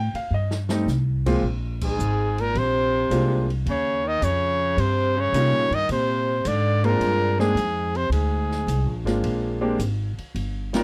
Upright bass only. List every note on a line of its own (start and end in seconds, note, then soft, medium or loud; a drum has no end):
0.00 0.11 A2 medium
0.14 muted upright bass stroke soft
0.31 0.85 G2 medium
0.86 1.41 C2 medium
1.42 1.97 A#1 medium
1.99 2.53 G#1 medium
2.55 3.09 A#1 medium
3.10 3.64 C2 medium
3.66 4.20 D#2 medium
4.22 4.76 F2 medium
4.77 5.31 G2 medium
5.32 5.53 C3 medium
5.53 5.70 A#2 medium
5.71 5.88 G2 medium
5.89 6.43 A#2 medium
6.45 6.99 G#2 medium
7.00 7.54 G2 medium
7.55 8.09 F2 medium
8.10 8.65 D2 medium
8.67 8.86 C2 medium
8.86 9.04 A#1 soft
9.04 9.22 G#1 medium
9.23 9.77 A#1 medium
9.79 10.15 G#1 medium
10.18 muted upright bass stroke soft
10.35 10.84 G1 medium